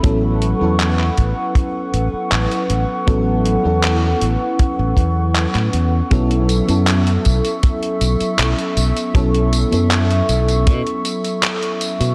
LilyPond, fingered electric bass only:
\new Staff \with { instrumentName = "Fingered electric bass" } { \clef bass \time 4/4 \key b \dorian \tempo 4 = 79 a,,8. e,8. a,,16 r8. a,,16 r16 a,,16 r16 a,,16 r16 | a,,8. e,8. a,,16 r8 a,,16 e,8. a,16 e,16 r16 | b,,8. fis,8. b,,16 r8. b,,16 r16 b,,16 r16 b,,16 r16 | b,,8. fis,8. b,,8 b,16 r4. b,16 | }